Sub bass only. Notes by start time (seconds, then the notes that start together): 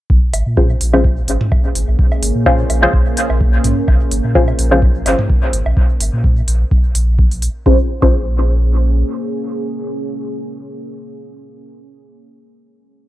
0.10 A#1
0.34 G#1
0.46 A#2
0.81 A#1
1.28 G#1
1.75 G#1
1.88 A#1
2.23 G#1
2.35 A#2
2.70 A#1
2.93 A#1
3.30 A#1
3.64 A#1
3.88 A#1
4.12 G#1
4.24 A#2
4.59 A#1
5.06 G#1
5.53 G#1
5.66 A#1
6.00 G#1
6.13 A#2
6.48 A#1
6.95 A#1
7.66 A#1
8.02 A#1